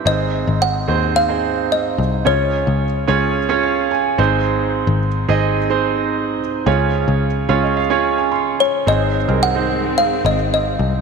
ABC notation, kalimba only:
X:1
M:4/4
L:1/8
Q:1/4=109
K:Abmix
V:1 name="Kalimba"
e2 g2 f2 e2 | d6- d z | z8 | z6 z d |
e2 g2 f e e2 |]